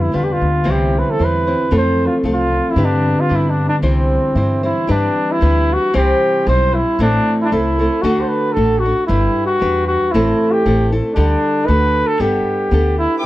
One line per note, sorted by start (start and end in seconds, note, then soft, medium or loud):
0.00 0.12 F2 medium
0.00 0.11 G3 medium
0.00 2.14 A3 medium
0.00 0.41 B3 medium
0.00 0.12 D4 medium
0.00 1.87 D4 medium
0.00 0.17 E4 medium
0.00 0.12 G4 medium
0.00 0.13 B4 medium
0.12 0.39 E2 medium
0.12 0.72 D3 medium
0.12 0.64 G3 soft
0.12 0.64 D4 soft
0.12 0.25 F4 medium
0.12 0.64 G4 soft
0.12 0.65 B4 medium
0.24 0.34 G4 medium
0.33 0.72 F4 medium
0.41 0.64 D2 medium
0.41 0.99 B3 medium
0.64 1.01 C2 medium
0.64 1.18 C3 medium
0.64 1.19 E3 medium
0.64 1.78 E3 medium
0.64 1.18 G3 medium
0.64 1.19 C4 medium
0.64 1.19 E4 medium
0.64 1.19 C5 medium
0.71 1.00 G4 medium
0.93 1.71 C4 medium
0.99 1.12 B4 medium
1.10 1.26 A4 medium
1.19 1.54 E2 medium
1.19 1.47 G3 soft
1.19 1.47 C4 soft
1.19 2.31 E4 medium
1.19 1.46 E4 soft
1.19 1.46 C5 medium
1.24 1.75 B4 medium
1.47 1.71 G3 soft
1.47 1.70 C4 soft
1.47 1.71 E4 soft
1.47 1.72 C5 soft
1.71 2.06 F2 medium
1.71 2.24 F3 medium
1.71 2.23 A3 medium
1.71 2.23 C4 medium
1.71 2.52 C4 medium
1.71 2.24 F4 medium
1.71 2.24 A4 medium
1.78 2.08 C5 medium
2.06 2.16 F4 medium
2.24 2.58 C2 medium
2.24 2.83 F3 medium
2.24 2.76 A3 soft
2.24 2.77 C4 soft
2.24 2.77 F4 medium
2.24 2.77 A4 medium
2.33 2.72 F4 medium
2.52 3.11 C4 medium
2.71 2.86 E4 medium
2.76 3.11 G2 loud
2.76 3.88 D3 medium
2.76 3.29 G3 medium
2.76 3.29 D4 medium
2.76 3.30 G4 medium
2.76 3.30 B4 medium
2.85 3.22 D4 medium
3.05 3.88 B3 medium
3.21 3.37 F4 medium
3.29 3.65 G2 medium
3.29 3.82 G3 soft
3.29 6.10 D4 medium
3.29 3.82 D4 soft
3.29 3.83 G4 soft
3.29 3.83 B4 medium
3.35 3.51 E4 medium
3.50 3.67 D4 medium
3.69 3.76 D4 medium
3.82 4.17 C2 medium
3.82 4.36 C3 medium
3.82 4.36 E3 medium
3.82 4.35 G3 medium
3.82 4.64 C4 medium
3.82 4.35 C4 medium
3.82 4.36 E4 medium
3.82 4.36 C5 medium
3.89 4.63 C4 medium
4.35 4.70 G2 medium
4.35 4.94 E3 medium
4.35 4.63 G3 soft
4.35 4.63 C4 soft
4.35 4.62 E4 medium
4.35 4.62 C5 medium
4.63 4.86 G3 soft
4.63 4.88 C4 soft
4.63 7.64 C4 medium
4.63 4.88 E4 soft
4.63 4.93 E4 medium
4.63 4.88 C5 soft
4.87 5.07 G2 medium
4.87 5.40 G3 medium
4.87 5.40 D4 medium
4.87 5.33 D4 medium
4.87 5.41 G4 medium
4.87 5.41 B4 medium
5.32 5.75 E4 medium
5.41 5.76 D2 medium
5.41 5.93 G3 medium
5.41 5.93 D4 medium
5.41 5.94 G4 medium
5.41 5.94 B4 medium
5.73 5.96 F#4 medium
5.93 6.12 C2 medium
5.93 6.46 C3 medium
5.93 6.46 E3 medium
5.93 6.46 G3 medium
5.93 6.46 C4 medium
5.93 6.46 E4 medium
5.93 6.50 G4 medium
5.93 6.47 C5 medium
6.47 6.80 B1 medium
6.47 6.99 G3 medium
6.47 6.99 C4 medium
6.47 6.99 E4 medium
6.47 6.76 C5 medium
6.47 7.00 C5 medium
6.75 6.99 E4 medium
6.99 7.16 A1 medium
6.99 7.51 A2 medium
6.99 7.51 E3 medium
6.99 7.50 A3 medium
6.99 7.51 C4 medium
6.99 7.37 D4 medium
6.99 7.52 E4 medium
6.99 7.52 A4 medium
7.42 7.51 D4 medium
7.42 7.46 E4 medium
7.50 7.86 C2 medium
7.50 7.78 A3 soft
7.50 7.79 C4 medium
7.50 8.03 E4 medium
7.50 7.79 E4 medium
7.50 7.78 A4 medium
7.79 8.02 A3 soft
7.79 8.04 C4 soft
7.79 8.04 E4 soft
7.79 8.04 A4 soft
8.02 8.21 D2 medium
8.02 8.56 D3 medium
8.02 8.55 A3 medium
8.02 8.55 D4 medium
8.02 8.23 F#4 medium
8.02 8.56 F#4 medium
8.02 8.56 A4 medium
8.21 8.29 C5 medium
8.28 8.54 B4 medium
8.52 8.83 A3 soft
8.52 8.83 D4 medium
8.52 8.80 A4 medium
8.57 8.90 A1 medium
8.57 8.84 F#4 medium
8.57 8.84 A4 medium
8.79 9.06 F#4 medium
8.85 9.07 D4 soft
8.85 9.09 F#4 soft
8.85 9.09 A4 soft
9.07 9.27 G1 medium
9.07 9.59 G3 medium
9.07 9.60 D4 medium
9.07 9.44 E4 medium
9.07 9.60 G4 medium
9.07 9.61 B4 medium
9.46 9.84 F#4 medium
9.60 9.95 E2 medium
9.60 10.12 G3 medium
9.60 10.13 D4 medium
9.60 10.13 G4 medium
9.60 10.13 B4 medium
9.87 10.13 F#4 medium
10.12 10.31 A1 medium
10.12 10.66 A2 medium
10.12 10.66 E3 medium
10.12 10.65 A3 medium
10.12 10.65 C4 medium
10.12 10.53 E4 medium
10.12 10.65 E4 medium
10.12 10.67 A4 medium
10.51 10.91 G4 medium
10.66 10.99 A1 medium
10.66 10.92 A3 medium
10.66 10.92 C4 medium
10.66 10.91 E4 medium
10.66 10.91 A4 medium
10.92 11.15 A3 soft
10.92 11.16 C4 soft
10.92 11.16 E4 soft
10.92 11.15 A4 soft
11.14 11.35 D2 medium
11.14 12.19 D3 medium
11.14 11.68 G3 medium
11.14 11.68 D4 medium
11.14 11.68 G4 medium
11.14 11.68 A4 medium
11.66 12.02 D2 medium
11.66 12.20 A3 soft
11.66 12.20 D4 medium
11.66 12.20 F#4 medium
11.66 12.20 A4 medium
11.66 12.08 B4 loud
12.07 12.22 A4 medium
12.20 12.37 G1 medium
12.20 12.76 G3 medium
12.20 12.70 B3 medium
12.20 12.71 D4 medium
12.20 12.98 G4 medium
12.20 12.72 G4 medium
12.20 12.72 A4 medium
12.71 13.06 D2 medium
12.71 13.24 B3 medium
12.71 13.24 D4 medium
12.71 13.25 G4 medium
12.71 13.25 A4 medium
12.98 13.18 E4 medium
13.18 13.26 E4 medium
13.22 13.26 B4 medium
13.22 13.26 D6 medium